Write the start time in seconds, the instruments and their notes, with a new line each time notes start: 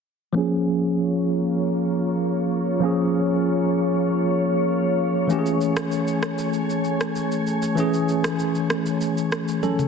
0.33 tine electric piano F3 A#3 C#4, ambient pad A#3 F4 C#5
0.38 tine electric piano G#4
2.80 tine electric piano F3 A#3 C#4
2.85 tine electric piano G#4
5.27 tine electric piano E3 A3 C#4, ambient pad A3 G#5, shaker
5.32 tine electric piano G4
5.39 tine electric piano G#4
5.46 shaker
5.61 shaker
5.77 cross-stick, shaker
5.92 shaker
6.08 shaker
6.23 cross-stick, shaker
6.39 shaker
6.53 shaker
6.70 shaker
6.84 shaker
7.01 cross-stick, shaker
7.16 shaker
7.32 shaker
7.47 shaker
7.62 shaker
7.75 tine electric piano E3 A3 C#4, shaker
7.80 tine electric piano G#4
7.94 shaker
8.09 shaker
8.24 cross-stick, shaker
8.39 shaker
8.55 shaker
8.70 cross-stick, shaker
8.86 shaker
9.01 shaker
9.17 shaker
9.32 cross-stick, shaker
9.48 shaker
9.63 tine electric piano C#4 A4, high tom, shaker
9.79 mid tom, shaker